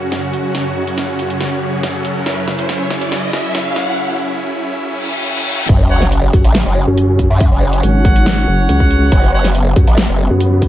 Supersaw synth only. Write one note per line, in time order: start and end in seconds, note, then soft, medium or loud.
0.00 5.65 F#2 medium
0.00 5.65 C#3 medium
0.00 5.65 C#4 medium
0.00 2.23 F#4 medium
2.26 5.66 E4 medium
5.69 10.68 C#3 medium
5.69 10.68 F#3 medium
5.69 9.11 C#4 medium
9.12 10.68 B3 medium